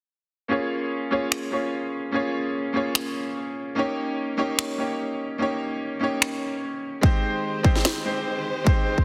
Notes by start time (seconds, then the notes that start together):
0.48 A#3 C#4 F4 G#4
0.52 C#5
1.11 A#3 C#4 F4 G#4 C#5
1.32 finger snap
1.51 A#3 C#4 F4 G#4 C#5
2.11 A#3 C#4 F4 G#4 C#5
2.73 A#3 C#4 F4 G#4 C#5
2.95 finger snap
3.75 A#3 C#4 D#4 G4 C#5
4.37 A#3 C#4 D#4 G4 C#5
4.59 finger snap
4.78 A#3 C#4 D#4 G4 C#5
5.38 A#3 C#4 D#4 G4
5.42 C#5
6.00 A#3 C#4 D#4 G4
6.04 C#5
6.22 finger snap
7.01 D#3 G#3 C4 D#4 G4 C5, kick
7.63 G#3 C4 D#4 G4 C5, kick
7.76 snare
7.85 finger snap, snare
8.04 G#3 C4 D#4 G4 C5
8.64 G#3 C4 D#4 G4, kick
8.68 C5
8.98 kick